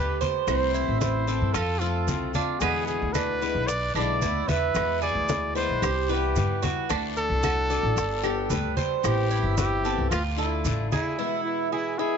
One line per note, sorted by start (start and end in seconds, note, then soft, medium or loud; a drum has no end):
0.00 0.20 D2 medium
0.00 0.48 D3 soft
0.00 0.47 A3 soft
0.00 0.48 B3 medium
0.00 0.21 G4 medium
0.00 0.48 G4 medium
0.00 0.19 B4 loud
0.21 0.73 C5 medium
0.21 high bongo soft
0.21 high conga medium
0.21 short guiro medium
0.21 maracas soft
0.47 0.86 C2 medium
0.47 1.27 C3 medium
0.47 1.27 E3 medium
0.47 1.27 A3 medium
0.47 1.27 C4 medium
0.47 1.27 E4 medium
0.47 0.98 C5 medium
0.47 high bongo medium
0.47 high conga soft
0.47 long guiro medium
0.47 claves medium
0.47 maracas medium
0.74 1.27 E4 medium
0.74 high conga soft
0.74 maracas soft
0.88 1.39 A1 medium
1.01 1.55 C5 medium
1.01 high bongo medium
1.01 high conga medium
1.01 short guiro medium
1.01 maracas medium
1.28 1.55 E3 medium
1.28 1.54 A3 medium
1.28 1.54 C4 medium
1.28 1.54 E4 medium
1.28 1.54 A4 medium
1.28 high bongo soft
1.28 high conga soft
1.28 short guiro medium
1.28 maracas soft
1.41 1.54 G2 medium
1.54 2.06 F2 loud
1.54 1.81 F4 medium
1.54 1.82 A4 loud
1.54 muted steel-string acoustic guitar stroke medium
1.54 high bongo medium
1.54 high conga soft
1.54 long guiro medium
1.54 claves medium
1.54 maracas medium
1.80 2.07 F3 medium
1.80 2.07 A3 medium
1.80 2.07 C4 medium
1.80 2.33 F4 medium
1.80 2.07 F4 medium
1.80 2.33 A4 medium
1.80 high bongo soft
1.80 high conga soft
1.80 maracas soft
2.07 2.33 C2 medium
2.07 2.61 F3 medium
2.07 2.61 A3 medium
2.07 2.61 C4 medium
2.07 2.62 F4 soft
2.07 high bongo soft
2.07 low bongo medium
2.07 high conga medium
2.07 short guiro medium
2.07 maracas medium
2.34 2.61 D4 medium
2.34 2.62 F4 medium
2.34 high bongo soft
2.34 high conga medium
2.34 short guiro medium
2.34 maracas soft
2.60 2.99 E2 medium
2.60 3.41 B2 medium
2.60 3.41 D3 medium
2.60 3.41 G#3 medium
2.60 3.13 B3 medium
2.60 3.42 B3 medium
2.60 3.41 E4 medium
2.60 2.86 G#4 loud
2.60 high bongo medium
2.60 high conga soft
2.60 long guiro medium
2.60 claves medium
2.60 maracas medium
2.87 3.15 G#4 medium
2.87 high conga soft
2.87 maracas soft
3.02 3.53 D2 medium
3.13 3.41 D4 medium
3.13 3.69 B4 loud
3.13 high bongo medium
3.13 high conga medium
3.13 short guiro medium
3.13 claves medium
3.13 maracas medium
3.41 3.68 D3 medium
3.41 3.68 G#3 medium
3.41 3.68 B3 medium
3.41 3.67 E4 medium
3.41 3.94 B4 medium
3.41 high bongo soft
3.41 high conga soft
3.41 short guiro medium
3.41 maracas soft
3.55 3.93 B1 medium
3.68 3.95 D5 loud
3.68 muted steel-string acoustic guitar stroke medium
3.68 high bongo medium
3.68 high conga soft
3.68 long guiro medium
3.68 maracas medium
3.95 4.19 B1 medium
3.95 4.20 D3 medium
3.95 4.21 G#3 medium
3.95 4.21 B3 medium
3.95 4.21 D4 medium
3.95 4.21 E4 medium
3.95 4.50 D5 medium
3.95 high bongo soft
3.95 high conga soft
3.95 claves medium
3.95 maracas soft
4.22 4.46 D2 medium
4.22 4.74 D3 soft
4.22 4.74 G#3 soft
4.22 4.75 B3 medium
4.22 4.48 E4 medium
4.22 4.75 E4 medium
4.22 high bongo soft
4.22 low bongo medium
4.22 high conga medium
4.22 short guiro medium
4.22 maracas medium
4.48 4.72 E2 medium
4.48 5.01 B4 loud
4.48 5.01 E5 medium
4.48 high bongo soft
4.48 high conga medium
4.48 short guiro medium
4.48 maracas soft
4.74 5.13 E2 loud
4.74 5.54 B2 medium
4.74 5.55 E3 medium
4.74 5.55 G#3 medium
4.74 5.55 B3 medium
4.74 5.54 E4 medium
4.74 high bongo medium
4.74 high conga soft
4.74 long guiro medium
4.74 claves medium
4.74 maracas medium
5.02 5.54 G#4 medium
5.02 5.52 D5 loud
5.02 high conga soft
5.02 maracas soft
5.15 5.66 D2 medium
5.29 high bongo medium
5.29 high conga medium
5.29 short guiro medium
5.29 maracas medium
5.55 5.81 E3 soft
5.55 5.82 G#3 medium
5.55 5.82 B3 medium
5.55 5.81 E4 medium
5.55 5.82 B4 medium
5.55 6.13 C5 loud
5.55 high bongo soft
5.55 high conga soft
5.55 short guiro medium
5.55 maracas soft
5.69 5.82 B1 medium
5.82 6.33 C2 loud
5.82 6.09 G4 medium
5.82 muted steel-string acoustic guitar stroke medium
5.82 high bongo medium
5.82 high conga soft
5.82 long guiro medium
5.82 claves medium
5.82 maracas medium
6.09 6.34 E3 medium
6.09 6.35 G3 medium
6.09 6.35 B3 medium
6.09 6.35 E4 medium
6.09 6.64 G4 medium
6.09 6.61 B4 medium
6.09 high bongo soft
6.09 high conga soft
6.09 maracas soft
6.35 6.61 G2 medium
6.35 6.88 E3 soft
6.35 6.89 G3 medium
6.35 6.89 B3 medium
6.35 6.89 E4 soft
6.35 high bongo soft
6.35 low bongo medium
6.35 high conga medium
6.35 short guiro medium
6.35 maracas medium
6.62 6.89 F#4 medium
6.62 high bongo soft
6.62 high conga medium
6.62 short guiro medium
6.62 maracas soft
6.89 7.28 D2 medium
6.89 7.69 D3 medium
6.89 7.69 A3 medium
6.89 7.42 D4 medium
6.89 7.69 D4 medium
6.89 7.68 F#4 medium
6.89 high bongo medium
6.89 high conga soft
6.89 long guiro medium
6.89 claves medium
6.89 maracas medium
7.17 8.74 A4 loud
7.17 high conga soft
7.17 maracas soft
7.30 7.81 C2 medium
7.43 7.69 F#4 medium
7.43 high bongo medium
7.43 high conga medium
7.43 short guiro medium
7.43 claves medium
7.43 maracas medium
7.70 7.96 A3 medium
7.70 7.96 D4 medium
7.70 7.96 F#4 medium
7.70 8.22 D5 medium
7.70 high bongo soft
7.70 high conga soft
7.70 short guiro medium
7.70 maracas soft
7.83 7.95 A1 medium
7.96 8.47 G1 medium
7.96 muted steel-string acoustic guitar stroke medium
7.96 high bongo medium
7.96 high conga soft
7.96 long guiro medium
7.96 maracas medium
8.23 8.49 G3 medium
8.23 8.50 B3 medium
8.23 8.50 D4 medium
8.23 8.49 G4 medium
8.23 8.50 G4 medium
8.23 high bongo soft
8.23 high conga soft
8.23 claves medium
8.23 maracas soft
8.50 8.76 D2 medium
8.50 9.03 G3 soft
8.50 9.03 B3 medium
8.50 9.04 D4 medium
8.50 9.04 G4 medium
8.50 8.76 B4 medium
8.50 high bongo soft
8.50 low bongo medium
8.50 high conga medium
8.50 short guiro medium
8.50 maracas medium
8.77 9.29 C5 medium
8.77 high bongo soft
8.77 high conga medium
8.77 short guiro medium
8.77 maracas soft
9.03 9.42 A1 loud
9.03 9.83 E3 medium
9.03 9.83 B3 medium
9.03 9.84 C4 medium
9.03 9.83 E4 medium
9.03 9.55 G4 medium
9.03 high bongo medium
9.03 high conga soft
9.03 long guiro medium
9.03 claves medium
9.03 maracas medium
9.31 9.83 E4 medium
9.31 high conga soft
9.31 maracas soft
9.43 9.95 G1 medium
9.57 10.08 G4 loud
9.57 high bongo medium
9.57 high conga loud
9.57 short guiro medium
9.57 maracas medium
9.84 10.11 B3 medium
9.84 10.11 C4 medium
9.84 10.10 E4 medium
9.84 10.11 A4 medium
9.84 high bongo soft
9.84 high conga soft
9.84 short guiro medium
9.84 maracas soft
9.98 10.11 C2 medium
10.10 10.62 D2 loud
10.10 10.23 F4 loud
10.10 10.38 F4 medium
10.10 muted steel-string acoustic guitar stroke medium
10.10 high bongo medium
10.10 high conga soft
10.10 long guiro medium
10.10 claves medium
10.10 maracas medium
10.37 10.64 A3 medium
10.37 10.64 D4 medium
10.37 10.88 E4 medium
10.37 10.63 F4 medium
10.37 10.90 A4 medium
10.37 high bongo soft
10.37 high conga soft
10.37 maracas soft
10.65 10.90 A1 medium
10.65 11.18 D3 medium
10.65 11.18 A3 soft
10.65 11.18 D4 medium
10.65 11.19 F4 medium
10.65 high bongo soft
10.65 low bongo medium
10.65 high conga medium
10.65 short guiro medium
10.65 maracas medium
10.91 11.41 E4 medium
10.91 11.18 G#4 medium
10.91 high bongo soft
10.91 high conga medium
10.91 short guiro medium
10.91 maracas soft
11.18 11.98 B2 medium
11.18 11.98 E3 medium
11.18 11.98 G#3 medium
11.18 11.99 B3 medium
11.18 11.71 E4 medium
11.18 11.98 E4 medium
11.44 11.70 E4 medium
11.72 12.00 E4 loud
11.72 11.98 G#4 medium
11.99 12.17 E3 medium
11.99 12.17 G#3 medium
11.99 12.17 B3 medium
11.99 12.17 E4 medium
11.99 12.17 G#4 medium
11.99 12.17 E5 medium